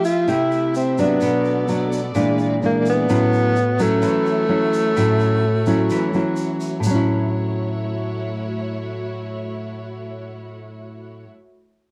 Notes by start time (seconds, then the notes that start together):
Already playing: F3 A3 E4 G4 E5
0.04 F4, shaker
0.28 C3 A3 E4 G4, shaker
0.51 shaker
0.75 C4, shaker
0.98 F#3 A3 B3 D4, shaker
1.21 B2 B3 F#4 A4 D5, shaker
1.45 shaker
1.68 F#3 A3 D4, shaker
1.92 shaker
2.15 A#2 E3 G#3 A#3 D4 E4 G#4, shaker
2.38 shaker
2.62 E3 G#3 A#3 D4, shaker
2.85 shaker
2.90 B3
3.09 A2 F#3 A3 C#4 E4 F#4 C#5, shaker
3.33 shaker
3.56 shaker
3.79 F#3 A3 C#4 E4, shaker
4.02 E3, shaker
4.26 shaker
4.49 F#3 C#4 E4
4.73 shaker
4.96 A2 F#3 C#4 E4, shaker
5.20 shaker
5.66 F#3 C#4 E4, shaker
5.90 E3, shaker
6.13 F#3 C#4 E4, shaker
6.36 shaker
6.60 shaker
6.80 A2, shaker
6.84 F#3 A3 E4 F#4 C#5
6.91 C#4
6.95 E4